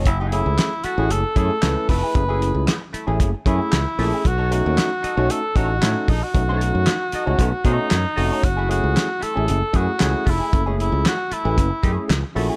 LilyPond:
<<
  \new Staff \with { instrumentName = "Cor anglais" } { \time 4/4 \key fis \dorian \tempo 4 = 114 e'8 e'4 fis'8 a'8 a'4 b'8~ | b'4. r4 e'4. | fis'8 fis'4. a'8 fis'4 dis'16 fis'16~ | fis'2~ fis'8 dis'4. |
fis'8 fis'4 a'4 fis'4 e'8~ | e'8 e'8 fis'8 e'4. r4 | }
  \new Staff \with { instrumentName = "Hollow-body jazz guitar" } { \time 4/4 \key fis \dorian r16 <a e' gis'>8 r8. <a e' a'>16 <a e' gis'>16 r8 <a e' gis'>8 r8 <a e' a'>16 <a e' gis'>16 | r16 <a e' gis'>8 r8. <a e' a'>16 <a e' gis'>16 r8 <a e' gis'>8 r8 <a e' a'>16 <a e' gis'>16 | r16 <dis' a' cis''>8 r8. <dis' a' dis''>16 <dis' a' cis''>16 r8 <dis' a' cis''>8 r8 <dis' a' dis''>16 r16 | r16 <dis' a' cis''>8 r8. <dis' a' dis''>16 <dis' a' cis''>16 r8 <dis' a' cis''>8 r8 <dis' a' dis''>16 <dis' a' cis''>16 |
r16 <a e' gis'>8 r8. <a e' a'>16 <a e' gis'>16 r8 <a e' gis'>8 r8 <a e' a'>16 <a e' gis'>16 | r16 <a e' gis'>8 r8. <a e' a'>16 <a e' gis'>16 r8 <a e' gis'>8 r8 <a e' a'>16 <a e' gis'>16 | }
  \new Staff \with { instrumentName = "Tine electric piano" } { \time 4/4 \key fis \dorian r8 <a cis' e' gis'>8. r8 <a cis' e' gis'>8 r16 <a cis' e' gis'>16 r16 <a cis' e' b'>8 r8 | <a cis' e' gis'>16 <a cis' e' gis'>8. r8. <a cis' e' gis'>8 r16 <a cis' e' gis'>8 r8 <a cis' e' gis'>8 | r8 <a cis' dis' fis'>8. r8 <a cis' dis' fis'>8 r16 <a cis' dis' a'>16 r16 <a cis' dis' a'>8 r8 | <a cis' dis' fis'>16 <a cis' d' dis' fis'>8. r8. <a cis' dis' fis'>8 r16 <a cis' dis' fis'>8 r8 <a cis' dis' fis'>8 |
r8 <a cis' e' gis'>8. r8 <a cis' e' gis'>8 r16 <a cis' e' gis'>16 r16 <a cis' e' gis'>8 r8 | <a cis' e' a'>16 <gis a cis' e' gis'>8. r8. <a cis' e' b'>8 r16 <a cis' e' gis'>8 r8 <a cis' e' fis'>8 | }
  \new Staff \with { instrumentName = "Fingered electric bass" } { \clef bass \time 4/4 \key fis \dorian fis,,8. cis,16 r8. a,,16 fis,,16 r16 fis,16 r16 cis,16 r16 eis,,16 r16 | fis,,8. cis,16 r8. a,,16 fis,,16 r16 fis,16 r16 cis,16 r16 ais,,16 r16 | b,,8. dis,16 r8. b,,16 r8 a,,8 a,16 r16 ais,,16 r16 | b,,8. fis,16 r8. cis,16 b,,16 r16 b,16 r16 fis,16 r16 eis,,16 r16 |
fis,,8. cis,16 r8. a,,16 fis,,16 r16 fis,16 r16 cis,16 r16 eis,,16 r16 | fis,,8. cis,16 r8. a,,16 fis,,16 r16 fis,16 r16 cis,16 r16 ais,,16 r16 | }
  \new DrumStaff \with { instrumentName = "Drums" } \drummode { \time 4/4 <hh bd>8 hh8 <hc hh sn>8 hh8 hh8 <hh bd>8 <hc hh sn>8 <hho bd>8 | <hh bd>8 hh8 <hc hh sn>8 hh8 <hh bd>8 <hh bd>8 <hc hh sn>8 hho8 | <hh bd>8 hh8 <hc hh sn>8 hh8 hh8 <hh bd>8 <hc hh sn>8 <hho bd>8 | <hh bd>8 hh8 <hc hh sn>8 hh8 <hh bd>8 <hh bd>8 <hc hh sn>8 hho8 |
<hh bd>8 hh8 <hc hh sn>8 hh8 hh8 <hh bd>8 <hc hh sn>8 <hho bd>8 | <hh bd>8 hh8 <hc hh sn>8 hh8 <hh bd>8 <hh bd>8 <hc hh sn>8 hho8 | }
>>